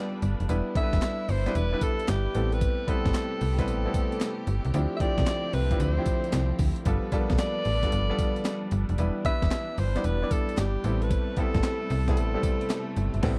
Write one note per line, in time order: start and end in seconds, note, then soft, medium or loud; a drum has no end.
0.00 0.49 G3 loud
0.00 2.30 G3 medium
0.00 0.49 B3 medium
0.00 0.49 D4 loud
0.00 2.31 D4 medium
0.00 0.47 F4 medium
0.00 0.51 F4 medium
0.00 0.51 G4 loud
0.00 0.47 A4 medium
0.00 0.51 A4 loud
0.00 0.47 B4 medium
0.00 0.19 D5 loud
0.22 0.35 G1 loud
0.22 closed hi-hat medium
0.22 tambourine medium
0.40 0.47 F1 medium
0.40 closed hi-hat medium
0.48 0.62 E1 loud
0.48 0.73 G3 medium
0.48 0.73 B3 medium
0.48 0.73 D4 medium
0.48 2.32 E4 medium
0.48 0.73 E4 medium
0.48 0.73 B4 loud
0.48 closed hi-hat medium
0.48 tambourine medium
0.75 1.32 G3 medium
0.75 1.33 B3 medium
0.75 1.33 D4 medium
0.75 1.33 E4 medium
0.75 0.84 A4 medium
0.75 1.31 E5 loud
0.75 kick loud
0.75 closed hi-hat medium
0.83 1.36 B4 medium
0.93 1.00 E1 medium
0.93 kick loud
0.93 snare medium
0.93 closed hi-hat medium
1.02 snare loud
1.02 clap loud
1.02 closed hi-hat medium
1.02 tambourine medium
1.28 1.48 G1 loud
1.28 1.58 C5 loud
1.28 open hi-hat medium
1.28 tambourine medium
1.46 1.67 G3 medium
1.46 1.67 B3 medium
1.46 1.67 D4 medium
1.46 1.67 E4 medium
1.46 1.68 B4 loud
1.46 snare medium
1.46 closed hi-hat medium
1.55 1.75 E1 loud
1.55 1.84 B4 loud
1.55 closed hi-hat medium
1.55 tambourine medium
1.72 2.33 G3 medium
1.72 2.33 B3 medium
1.72 2.35 D4 medium
1.72 2.34 E4 medium
1.72 2.35 B4 loud
1.81 2.11 A4 loud
1.81 kick loud
1.81 closed hi-hat medium
1.81 tambourine medium
2.00 closed hi-hat medium
2.08 2.28 G1 loud
2.08 2.55 G4 medium
2.08 snare loud
2.08 clap medium
2.08 clap loud
2.08 closed hi-hat loud
2.08 tambourine loud
2.34 2.68 A1 loud
2.34 4.71 C3 medium
2.34 2.82 G3 medium
2.34 6.82 A3 medium
2.34 2.82 B3 medium
2.34 2.82 C4 medium
2.34 2.83 E4 medium
2.34 6.82 G4 loud
2.34 2.83 A4 medium
2.34 closed hi-hat medium
2.34 tambourine medium
2.52 2.91 B4 medium
2.52 closed hi-hat medium
2.61 kick loud
2.61 closed hi-hat medium
2.61 tambourine medium
2.88 3.45 G3 medium
2.88 3.45 B3 medium
2.88 3.45 C4 medium
2.88 3.45 E4 medium
2.88 3.59 A4 medium
2.88 3.45 B4 loud
2.88 kick loud
2.88 closed hi-hat medium
3.05 3.12 G1 medium
3.05 kick loud
3.05 snare medium
3.05 closed hi-hat soft
3.14 snare loud
3.14 clap medium
3.14 clap loud
3.14 closed hi-hat medium
3.14 tambourine loud
3.41 3.70 C2 medium
3.41 open hi-hat medium
3.41 tambourine medium
3.59 3.80 G3 medium
3.59 3.80 B3 medium
3.59 3.80 C4 medium
3.59 3.80 E4 medium
3.59 4.44 A4 medium
3.59 3.80 B4 medium
3.59 kick loud
3.59 snare medium
3.59 closed hi-hat medium
3.68 3.88 A1 loud
3.68 closed hi-hat medium
3.68 tambourine medium
3.85 4.63 G3 medium
3.85 4.63 B3 medium
3.85 4.64 C4 medium
3.85 4.64 E4 medium
3.85 4.64 A4 medium
3.94 kick loud
3.94 closed hi-hat medium
3.94 tambourine medium
4.12 closed hi-hat soft
4.21 snare loud
4.21 clap medium
4.21 closed hi-hat medium
4.21 tambourine loud
4.47 4.60 G1 medium
4.47 closed hi-hat medium
4.47 tambourine medium
4.65 4.72 C2 medium
4.65 closed hi-hat medium
4.73 4.87 D2 loud
4.73 6.84 D3 medium
4.73 8.94 F3 medium
4.73 4.98 F3 medium
4.73 6.84 C4 medium
4.73 4.98 C4 medium
4.73 4.98 D4 medium
4.73 6.84 E4 medium
4.73 4.98 E4 medium
4.73 4.98 G4 medium
4.73 closed hi-hat medium
4.73 tambourine medium
4.97 5.57 F3 medium
4.97 5.02 E5 medium
4.97 kick loud
4.97 closed hi-hat medium
5.01 5.57 C4 medium
5.01 5.58 D4 medium
5.01 5.58 E4 medium
5.01 5.58 G4 loud
5.01 5.55 D5 loud
5.18 5.24 C2 medium
5.18 kick loud
5.18 snare medium
5.18 closed hi-hat soft
5.26 snare loud
5.26 clap medium
5.26 clap loud
5.26 closed hi-hat medium
5.26 tambourine loud
5.53 5.73 C2 medium
5.53 5.82 B4 medium
5.53 open hi-hat medium
5.53 tambourine medium
5.71 5.92 F3 medium
5.71 5.92 C4 medium
5.71 5.92 D4 medium
5.71 5.92 E4 medium
5.71 5.93 G4 medium
5.71 kick medium
5.71 closed hi-hat medium
5.80 6.00 D2 loud
5.80 6.60 C5 medium
5.80 closed hi-hat medium
5.80 tambourine medium
5.98 6.76 F3 medium
5.98 6.76 C4 medium
5.98 6.76 D4 medium
5.98 6.76 E4 medium
5.98 6.76 G4 loud
6.06 kick loud
6.06 closed hi-hat medium
6.06 tambourine medium
6.24 closed hi-hat medium
6.32 6.53 C2 loud
6.32 snare loud
6.32 clap medium
6.32 closed hi-hat medium
6.32 tambourine loud
6.59 6.72 D2 medium
6.59 kick loud
6.59 open hi-hat medium
6.59 tambourine medium
6.76 closed hi-hat medium
6.85 6.99 G1 loud
6.85 13.39 G3 medium
6.85 7.10 G3 medium
6.85 7.10 B3 medium
6.85 10.80 D4 medium
6.85 7.10 D4 medium
6.85 7.10 F4 medium
6.85 8.96 A4 medium
6.85 7.10 A4 loud
6.85 8.96 B4 medium
6.85 kick loud
6.85 closed hi-hat medium
6.85 tambourine medium
7.12 7.69 G3 loud
7.12 7.21 A#3 medium
7.12 7.70 D4 medium
7.12 7.70 F4 loud
7.12 7.70 A4 loud
7.12 kick loud
7.12 closed hi-hat medium
7.19 7.73 B3 loud
7.30 7.37 B1 medium
7.30 kick loud
7.30 snare medium
7.30 closed hi-hat medium
7.38 8.68 D5 loud
7.38 snare loud
7.38 clap loud
7.38 clap medium
7.38 closed hi-hat medium
7.38 tambourine loud
7.65 7.85 A1 medium
7.65 open hi-hat medium
7.65 tambourine medium
7.83 8.04 G3 medium
7.83 8.04 B3 medium
7.83 8.04 D4 medium
7.83 8.05 F4 medium
7.83 8.05 A4 medium
7.83 kick medium
7.83 snare medium
7.83 closed hi-hat medium
7.92 8.12 G1 medium
7.92 closed hi-hat medium
7.92 tambourine medium
8.09 8.88 G3 loud
8.09 8.88 B3 medium
8.09 8.88 D4 medium
8.09 8.88 F4 medium
8.09 8.88 A4 loud
8.18 kick loud
8.18 closed hi-hat medium
8.18 tambourine medium
8.36 closed hi-hat soft
8.45 snare loud
8.45 clap loud
8.45 clap medium
8.45 closed hi-hat medium
8.45 tambourine loud
8.71 8.85 G1 loud
8.71 closed hi-hat medium
8.71 tambourine medium
8.89 8.96 F1 medium
8.89 closed hi-hat medium
8.98 9.11 E1 loud
8.98 10.82 E3 medium
8.98 9.22 G3 medium
8.98 9.22 B3 medium
8.98 9.22 D4 medium
8.98 9.23 E4 medium
8.98 9.23 B4 loud
8.98 closed hi-hat medium
8.98 tambourine medium
9.25 9.82 G3 medium
9.25 9.82 B3 medium
9.25 9.82 D4 medium
9.25 9.82 E4 medium
9.25 9.82 B4 loud
9.25 9.80 E5 loud
9.25 kick loud
9.25 closed hi-hat medium
9.42 9.49 E1 medium
9.42 kick loud
9.42 snare medium
9.42 closed hi-hat medium
9.51 snare loud
9.51 clap medium
9.51 clap loud
9.51 closed hi-hat medium
9.51 tambourine loud
9.78 9.98 G1 loud
9.78 10.07 C5 loud
9.78 open hi-hat medium
9.78 tambourine medium
9.96 10.17 G3 medium
9.96 10.17 B3 medium
9.96 10.17 D4 medium
9.96 10.17 E4 medium
9.96 10.17 D5 medium
9.96 snare medium
9.96 closed hi-hat medium
10.04 10.24 E1 medium
10.04 10.33 B4 loud
10.04 closed hi-hat medium
10.04 tambourine medium
10.22 10.83 G3 medium
10.22 10.83 B3 medium
10.22 10.84 D4 medium
10.22 10.84 E4 medium
10.22 10.85 D5 loud
10.31 10.60 A4 loud
10.31 kick loud
10.31 closed hi-hat medium
10.31 tambourine medium
10.49 closed hi-hat medium
10.57 10.77 G1 medium
10.57 11.04 G4 medium
10.57 snare loud
10.57 clap medium
10.57 closed hi-hat medium
10.57 tambourine loud
10.83 11.17 A1 loud
10.83 13.39 C3 medium
10.83 11.32 G3 medium
10.83 13.39 A3 loud
10.83 11.32 B3 medium
10.83 11.32 C4 medium
10.83 11.32 E4 medium
10.83 11.32 A4 medium
10.83 closed hi-hat medium
10.83 tambourine medium
11.02 11.40 B4 medium
11.02 closed hi-hat medium
11.11 kick loud
11.11 closed hi-hat medium
11.11 tambourine medium
11.37 11.94 G3 medium
11.37 11.94 B3 medium
11.37 11.94 C4 medium
11.37 11.95 E4 medium
11.37 12.08 A4 loud
11.37 11.95 A4 loud
11.37 kick loud
11.37 closed hi-hat medium
11.54 11.61 G1 loud
11.54 kick loud
11.54 snare medium
11.54 closed hi-hat medium
11.63 snare loud
11.63 clap loud
11.63 closed hi-hat medium
11.63 tambourine medium
11.90 12.18 C2 loud
11.90 open hi-hat medium
11.90 tambourine medium
12.08 12.29 G3 medium
12.08 12.29 B3 medium
12.08 12.29 C4 medium
12.08 12.29 E4 medium
12.08 12.30 A4 medium
12.08 12.93 A4 medium
12.08 kick medium
12.08 snare medium
12.08 closed hi-hat medium
12.17 12.37 A1 loud
12.17 closed hi-hat medium
12.17 tambourine medium
12.34 13.12 G3 medium
12.34 13.12 B3 medium
12.34 13.13 C4 medium
12.34 13.13 E4 medium
12.34 13.13 A4 medium
12.43 kick loud
12.43 closed hi-hat medium
12.43 tambourine medium
12.61 closed hi-hat medium
12.70 snare loud
12.70 clap loud
12.70 clap medium
12.70 closed hi-hat medium
12.70 tambourine loud
12.97 13.10 G1 medium
12.97 closed hi-hat medium
12.97 tambourine medium
13.14 13.21 G1 medium
13.14 closed hi-hat medium
13.23 13.39 A1 loud
13.23 13.39 G3 loud
13.23 13.39 B3 loud
13.23 13.39 C4 loud
13.23 13.39 E4 loud
13.23 13.39 A4 loud
13.23 kick loud
13.23 snare loud
13.23 crash medium